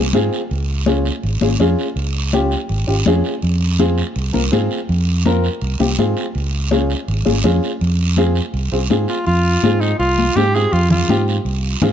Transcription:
0.00 0.11 C2 medium
0.13 0.29 G#2 medium
0.13 0.39 C4 medium
0.13 0.40 F4 medium
0.13 0.40 G#4 medium
0.13 high conga medium
0.13 short guiro medium
0.33 short guiro medium
0.51 1.09 C#2 medium
0.51 long guiro medium
0.86 1.06 C#4 medium
0.86 1.06 F4 medium
0.86 1.06 G#4 medium
0.86 high conga medium
0.86 short guiro medium
1.05 short guiro medium
1.23 1.38 G#1 medium
1.23 long guiro medium
1.41 1.56 G#1 medium
1.41 1.48 C#4 medium
1.41 1.48 F4 medium
1.41 1.48 G#4 medium
1.41 high conga medium
1.60 1.74 F2 medium
1.60 1.86 C#4 medium
1.60 1.86 F4 medium
1.60 1.86 G#4 loud
1.60 high conga medium
1.60 short guiro medium
1.78 short guiro medium
1.96 2.55 C#2 medium
1.96 long guiro medium
2.33 2.52 C#4 medium
2.33 2.52 F4 medium
2.33 2.53 G4 medium
2.33 high conga medium
2.33 short guiro medium
2.51 short guiro medium
2.69 2.84 G#1 medium
2.69 long guiro medium
2.87 3.03 G#1 medium
2.87 2.94 C#4 medium
2.87 2.94 F4 medium
2.87 2.95 G4 medium
3.06 3.21 F2 medium
3.06 3.32 C#4 medium
3.06 3.32 F4 medium
3.06 3.33 G#4 loud
3.06 high conga medium
3.06 short guiro medium
3.24 short guiro medium
3.42 4.01 F2 medium
3.42 long guiro medium
3.79 3.98 C4 medium
3.79 3.99 F4 medium
3.79 3.99 G#4 medium
3.79 high conga medium
3.79 short guiro medium
3.98 short guiro medium
4.16 4.31 C2 medium
4.16 long guiro medium
4.33 4.49 C2 medium
4.33 4.40 C4 medium
4.33 4.40 F4 medium
4.33 4.40 A#4 medium
4.33 high conga medium
4.52 4.67 G#2 medium
4.52 4.78 C4 medium
4.52 4.78 F4 medium
4.52 4.78 G#4 medium
4.52 high conga medium
4.52 short guiro medium
4.71 short guiro medium
4.89 5.48 F2 medium
4.89 long guiro medium
5.25 5.45 C4 medium
5.25 5.45 F4 medium
5.25 5.45 A#4 medium
5.25 high conga medium
5.25 short guiro medium
5.44 short guiro medium
5.61 5.77 C2 medium
5.61 long guiro medium
5.79 5.95 C2 medium
5.79 5.86 C4 medium
5.79 5.86 F4 medium
5.79 5.87 G4 medium
5.79 high conga medium
5.98 6.13 G#2 medium
5.98 6.24 C4 medium
5.98 6.24 F4 medium
5.98 6.24 G#4 medium
5.98 high conga medium
5.98 short guiro medium
6.17 short guiro medium
6.35 6.94 C#2 loud
6.35 long guiro medium
6.71 6.90 C#4 medium
6.71 6.91 F4 medium
6.71 6.91 G#4 medium
6.71 high conga medium
6.71 short guiro medium
6.90 short guiro medium
7.08 7.23 G#1 medium
7.08 long guiro medium
7.25 7.41 G#1 medium
7.25 7.32 C#4 medium
7.25 7.32 F4 medium
7.25 7.32 G#4 medium
7.25 high conga medium
7.44 7.59 F2 medium
7.44 7.70 C#4 medium
7.44 7.70 F4 medium
7.44 7.70 G#4 medium
7.44 high conga medium
7.44 short guiro medium
7.63 short guiro medium
7.81 8.40 F2 medium
7.81 long guiro medium
8.17 8.36 C4 medium
8.17 8.37 F4 medium
8.17 8.37 G#4 loud
8.17 high conga medium
8.17 short guiro medium
8.35 short guiro medium
8.54 8.68 C2 medium
8.54 long guiro medium
8.72 8.87 C2 medium
8.72 8.79 C4 medium
8.72 8.79 F4 medium
8.72 8.79 G#4 medium
8.90 9.05 G#2 medium
8.90 9.16 C4 medium
8.90 9.16 F4 medium
8.90 9.16 G#4 medium
8.90 high conga medium
8.90 short guiro medium
9.08 9.26 F4 medium
9.08 short guiro medium
9.26 9.56 F2 medium
9.26 9.82 F4 medium
9.26 long guiro medium
9.63 9.93 G#2 medium
9.63 9.89 C4 medium
9.63 9.89 F4 medium
9.63 9.90 G#4 medium
9.63 high conga medium
9.63 short guiro medium
9.80 9.98 D#4 medium
9.80 short guiro medium
9.99 10.29 C2 medium
9.99 10.37 F4 medium
9.99 long guiro medium
10.18 high conga medium
10.36 10.65 G#2 medium
10.36 10.43 C4 medium
10.36 10.43 F4 medium
10.36 10.56 G4 loud
10.36 10.43 G#4 medium
10.36 high conga medium
10.36 short guiro medium
10.55 10.74 C4 medium
10.55 10.74 F4 medium
10.55 10.74 G4 medium
10.55 10.74 G#4 loud
10.55 short guiro medium
10.73 11.02 F2 medium
10.73 10.91 F4 loud
10.73 long guiro medium
10.90 11.25 F4 medium
10.90 low conga medium
11.09 11.38 G#2 loud
11.09 11.35 C4 medium
11.09 11.35 F4 medium
11.09 11.35 G4 medium
11.09 high conga medium
11.09 short guiro medium
11.28 short guiro medium
11.45 11.74 C2 medium
11.45 long guiro medium
11.82 11.93 G#2 medium
11.82 11.89 C4 medium
11.82 11.89 F4 medium
11.82 11.89 G#4 medium
11.82 high conga medium
11.82 low conga medium
11.82 short guiro medium

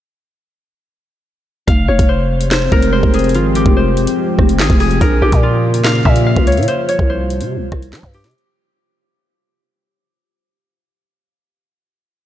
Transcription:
1.67 1.88 F1 loud
1.67 6.64 F3 medium
1.67 4.98 G#3 medium
1.67 4.98 C4 medium
1.67 4.98 G4 loud
1.67 3.34 F5 loud
1.67 kick loud
1.67 closed hi-hat medium
1.88 1.99 F1 loud
1.88 2.15 C#5 medium
1.99 2.69 F1 loud
1.99 kick loud
1.99 closed hi-hat medium
2.09 2.51 C5 medium
2.41 closed hi-hat medium
2.51 2.92 C5 medium
2.51 snare loud
2.51 clap medium
2.72 3.02 F1 loud
2.72 4.84 A#4 medium
2.72 kick medium
2.82 closed hi-hat medium
2.92 3.76 C5 medium
3.03 3.36 F1 loud
3.03 kick loud
3.14 3.62 G#4 medium
3.14 closed hi-hat medium
3.19 closed hi-hat medium
3.24 closed hi-hat medium
3.29 closed hi-hat medium
3.35 3.64 G#1 loud
3.35 5.43 F4 medium
3.35 closed hi-hat medium
3.55 4.66 G4 medium
3.55 closed hi-hat medium
3.66 3.99 F1 loud
3.66 kick loud
3.77 5.75 C5 medium
3.97 4.07 E1 medium
3.97 closed hi-hat medium
4.07 closed hi-hat medium
4.39 4.61 F1 loud
4.39 kick medium
4.39 cross-stick medium
4.49 closed hi-hat medium
4.59 4.69 G#1 loud
4.59 4.80 G#4 medium
4.59 snare loud
4.59 clap loud
4.70 5.00 F1 loud
4.70 kick loud
4.80 5.28 G#4 medium
4.80 open hi-hat medium
4.91 closed hi-hat soft
5.01 5.21 A#1 loud
5.01 6.66 C#3 medium
5.01 6.66 A#3 medium
5.01 6.66 F4 medium
5.01 7.13 A#4 medium
5.01 kick loud
5.01 closed hi-hat medium
5.22 5.32 A#1 loud
5.22 7.57 G4 medium
5.32 6.02 A#2 loud
5.32 kick loud
5.32 closed hi-hat medium
5.43 6.11 F4 medium
5.74 closed hi-hat medium
5.84 6.11 F5 loud
5.84 snare loud
5.84 clap medium
6.05 6.35 A#2 loud
6.05 6.32 E5 medium
6.05 kick medium
6.16 closed hi-hat medium
6.26 7.93 F5 medium
6.37 6.59 C#2 loud
6.37 kick loud
6.47 6.74 C#5 medium
6.47 closed hi-hat medium
6.52 closed hi-hat medium
6.57 6.67 A#2 loud
6.57 closed hi-hat medium
6.63 closed hi-hat medium
6.68 8.33 C3 medium
6.68 8.33 F3 medium
6.68 8.33 G3 medium
6.68 8.33 F4 medium
6.68 6.95 C5 medium
6.68 closed hi-hat medium
6.89 7.16 C#5 medium
6.89 closed hi-hat medium
6.99 7.42 C2 loud
6.99 kick loud
7.10 9.08 C5 medium
7.30 closed hi-hat medium
7.41 7.58 C3 loud
7.41 closed hi-hat medium
7.56 7.71 C2 loud
7.72 7.94 C2 loud
7.72 kick medium
7.72 cross-stick loud
7.82 closed hi-hat medium
7.93 8.03 G3 loud
7.93 snare loud
7.93 clap loud
8.03 8.26 G2 loud
8.03 kick loud
8.14 10.50 G4 medium
8.14 open hi-hat medium
8.24 8.34 C3 loud
8.24 snare medium
8.24 closed hi-hat medium
8.31 closed hi-hat medium
8.38 closed hi-hat soft

